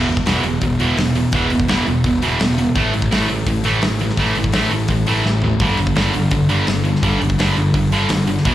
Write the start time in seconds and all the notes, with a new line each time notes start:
0.08 E1 E2 B2, open hi-hat
0.17 kick
0.26 E1 E2 B2 E3, snare, open hi-hat
0.43 E1 E2 B2, open hi-hat
0.61 E1 E2 B2, kick, open hi-hat
0.79 E1 E2 B2 E3, open hi-hat
0.97 E1 E2 B2, snare, open hi-hat
1.15 E2 B2, open hi-hat
1.32 E1 E2 B2 E3, kick, open hi-hat
1.50 E1 E2 B2, open hi-hat
1.60 kick
1.68 E1 E2 B2 E3, snare, open hi-hat
1.86 E1 E2 B2, open hi-hat
2.04 E1 E2 B2, kick, open hi-hat
2.22 E1 E2 B2 E3, open hi-hat
2.40 E1 E2 B2, snare, open hi-hat
2.58 E2 B2, open hi-hat
2.75 A1 A2 E3 A3, kick, open hi-hat
2.94 A1 A2 E3, open hi-hat
3.02 kick
3.11 A1 A2 E3 A3, snare, open hi-hat
3.29 A1 A2 E3, open hi-hat
3.46 A1 A2 E3, kick, open hi-hat
3.64 A1 A2 E3 A3, open hi-hat
3.82 A1 A2 E3, snare, open hi-hat
3.99 A2 E3, open hi-hat
4.09 snare
4.17 A1 A2 E3 A3, kick, open hi-hat
4.35 A1 A2 E3, open hi-hat
4.44 kick
4.52 A1 A2 E3 A3, snare, open hi-hat
4.71 A1 A2 E3, open hi-hat
4.88 A1 A2 E3, kick, open hi-hat
5.06 A1 A2 E3 A3, open hi-hat
5.25 A1 A2 E3, snare
5.42 A2 E3, floor tom
5.60 G1 G2 D3 G3, kick, open hi-hat
5.77 G1 G2 D3, open hi-hat
5.87 kick
5.95 G1 G2 D3 G3, snare, open hi-hat
6.14 G1 G2 D3, open hi-hat
6.31 G1 G2 D3, kick, open hi-hat
6.49 G1 G2 D3 G3, open hi-hat
6.67 G1 G2 D3, snare, open hi-hat
6.85 G2 D3, open hi-hat
6.95 snare
7.03 G1 G2 D3 G3, kick, open hi-hat
7.20 G1 G2 D3, open hi-hat
7.30 kick
7.39 G1 G2 D3 G3, snare, open hi-hat
7.56 G1 G2 D3, open hi-hat
7.74 G1 G2 D3, kick, open hi-hat
7.92 G1 G2 D3 G3, open hi-hat
8.09 G1 G2 D3, snare, open hi-hat
8.27 G2 D3, open hi-hat
8.37 snare
8.45 E1 E2 B2 E3, kick, open hi-hat